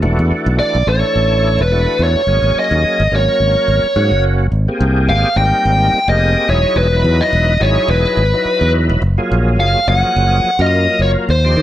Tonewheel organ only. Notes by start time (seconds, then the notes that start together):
0.02 E3 A3 D4 F#4
0.87 E3 A3 D4 A4
1.72 E3 A3 D4 F#4
2.28 F#3 A#3 C#4 G#4
3.12 F#3 A#3 C#4 A#4
3.96 F#3 A#3 C#4 F#4
4.68 A#3 C4 G4 G#4
5.36 G3 A#3 C4 D#4
6.08 A#3 C4 G4 G#4
6.49 F#3 D#4 E4 G#4
6.92 F#3 D#4 E4 B4
7.60 F#3 D#4 E4 G#4
8.34 F#3 D#4 E4 B4
9.18 F#3 A#3 F4 G#4
9.87 F3 F#3 A#3 G#4
10.60 F#3 A#3 F4 A#4
11.44 F3 D4 D#4 G4